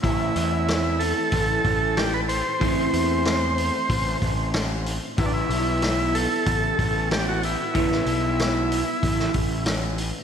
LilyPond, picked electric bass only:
\new Staff \with { instrumentName = "Picked electric bass" } { \clef bass \time 4/4 \key a \minor \tempo 4 = 94 a,,8 e,4. a,,8 a,,4. | a,,8 e,4. a,,8 a,,4. | a,,8 b,,4. a,,8 a,,4. | a,,8 b,,4. a,,8 a,,4. | }